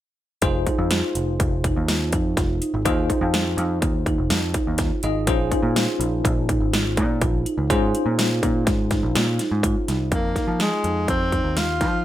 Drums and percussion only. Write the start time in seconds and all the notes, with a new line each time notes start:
0.42 kick, closed hi-hat
0.67 kick, closed hi-hat
0.91 snare, closed hi-hat
1.15 closed hi-hat
1.40 kick, closed hi-hat
1.64 kick, closed hi-hat
1.88 snare, closed hi-hat
2.13 kick, closed hi-hat
2.37 kick, snare, closed hi-hat
2.62 closed hi-hat
2.85 kick, closed hi-hat
3.10 kick, closed hi-hat
3.34 snare, closed hi-hat
3.58 closed hi-hat
3.82 kick, closed hi-hat
4.06 kick, closed hi-hat
4.30 snare, closed hi-hat
4.54 kick, closed hi-hat
4.78 kick, snare, closed hi-hat
5.03 closed hi-hat
5.27 kick, closed hi-hat
5.52 kick, closed hi-hat
5.76 snare, closed hi-hat
6.01 closed hi-hat
6.25 kick, closed hi-hat
6.49 kick, closed hi-hat
6.74 snare, closed hi-hat
6.97 kick, closed hi-hat
7.21 kick, closed hi-hat
7.46 closed hi-hat
7.70 kick, closed hi-hat
7.95 closed hi-hat
8.19 snare, closed hi-hat
8.43 kick, closed hi-hat
8.67 kick, snare, closed hi-hat
8.91 kick, snare, closed hi-hat
9.15 snare, closed hi-hat
9.39 snare, closed hi-hat
9.63 kick, closed hi-hat
9.88 snare, closed hi-hat
10.12 kick, closed hi-hat
10.36 kick, snare, closed hi-hat
10.60 snare, closed hi-hat
10.84 closed hi-hat
11.08 kick, closed hi-hat
11.32 kick, closed hi-hat
11.57 snare, closed hi-hat
11.81 kick, snare, closed hi-hat